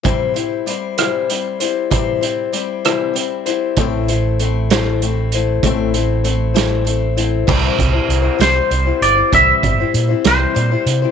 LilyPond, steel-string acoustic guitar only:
\new Staff \with { instrumentName = "Steel-string acoustic guitar" } { \time 6/8 \key c \major \tempo 4. = 65 <c e g c' e' c''>8 <g c' e' c''>8 <g c' e' c''>8 <c e g c' e' c''>8 <g c' e' c''>8 <g c' e' c''>8 | <c e g c' e' c''>8 <g c' e' c''>8 <g c' e' c''>8 <c e g c' e' c''>8 <g c' e' c''>8 <g c' e' c''>8 | <a, e a c' e' c''>8 <a c' e' c''>8 <a c' e' c''>8 <a, e a c' e' c''>8 <a c' e' c''>8 <a c' e' c''>8 | <a, e a c' e' c''>8 <a c' e' c''>8 <a c' e' c''>8 <a, e a c' e' c''>8 <a c' e' c''>8 <a c' e' c''>8 |
<c e g c' e' c''>8 <g c' e' c''>16 <g c' e' c''>8 <g c' e' c''>16 <c e g c' e' c''>8 <g c' e' c''>16 <g c' e' c''>8 <g c' e' c''>16 | <c e g c' e' c''>8 <g c' e' c''>16 <g c' e' c''>8 <g c' e' c''>16 <c e g c' e' c''>8 <g c' e' c''>16 <g c' e' c''>8 <g c' e' c''>16 | }